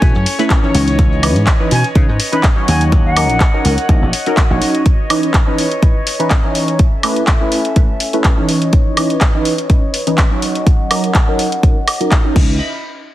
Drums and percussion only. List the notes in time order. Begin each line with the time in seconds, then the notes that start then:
0.02 kick, closed hi-hat, shaker
0.15 shaker
0.26 open hi-hat
0.39 closed hi-hat, shaker
0.50 kick, clap, closed hi-hat, shaker
0.63 shaker
0.75 open hi-hat
0.88 closed hi-hat, shaker
0.99 kick, closed hi-hat, shaker
1.12 shaker
1.23 open hi-hat, high woodblock
1.36 closed hi-hat, shaker
1.47 kick, clap, closed hi-hat, shaker
1.60 shaker
1.71 open hi-hat
1.84 closed hi-hat, shaker
1.95 kick, closed hi-hat, shaker
2.09 shaker
2.20 open hi-hat
2.32 closed hi-hat, shaker
2.43 kick, clap, closed hi-hat
2.58 shaker
2.68 open hi-hat
2.81 closed hi-hat, shaker
2.92 kick, closed hi-hat, shaker
3.06 shaker
3.17 open hi-hat, high woodblock
3.30 closed hi-hat, shaker
3.40 kick, clap, closed hi-hat
3.54 shaker
3.65 open hi-hat
3.78 closed hi-hat, shaker
3.89 kick, closed hi-hat
4.02 shaker
4.13 open hi-hat
4.26 closed hi-hat, shaker
4.37 kick, clap, closed hi-hat
4.62 open hi-hat
4.74 closed hi-hat, shaker
4.86 kick, closed hi-hat
5.10 open hi-hat, high woodblock
5.23 closed hi-hat
5.34 kick, clap, closed hi-hat
5.58 open hi-hat
5.72 closed hi-hat
5.83 kick, closed hi-hat
6.07 open hi-hat
6.20 closed hi-hat
6.30 kick, clap, closed hi-hat
6.55 open hi-hat
6.68 closed hi-hat
6.79 kick, closed hi-hat
7.03 open hi-hat, high woodblock
7.16 closed hi-hat
7.27 kick, clap, closed hi-hat
7.52 open hi-hat
7.65 closed hi-hat
7.76 kick, closed hi-hat
8.00 open hi-hat
8.13 closed hi-hat
8.24 kick, clap, closed hi-hat
8.49 open hi-hat
8.62 closed hi-hat
8.73 kick, closed hi-hat
8.97 open hi-hat, high woodblock
9.10 closed hi-hat
9.21 kick, clap, closed hi-hat
9.45 open hi-hat
9.58 closed hi-hat
9.70 kick, closed hi-hat
9.94 open hi-hat
10.07 closed hi-hat
10.18 kick, clap, closed hi-hat
10.42 open hi-hat
10.55 closed hi-hat
10.67 kick, closed hi-hat
10.91 open hi-hat, high woodblock
11.04 closed hi-hat
11.14 kick, clap, closed hi-hat
11.39 open hi-hat
11.52 closed hi-hat
11.63 kick, closed hi-hat
11.88 open hi-hat, high woodblock
12.01 closed hi-hat
12.11 kick, clap, closed hi-hat
12.36 kick, crash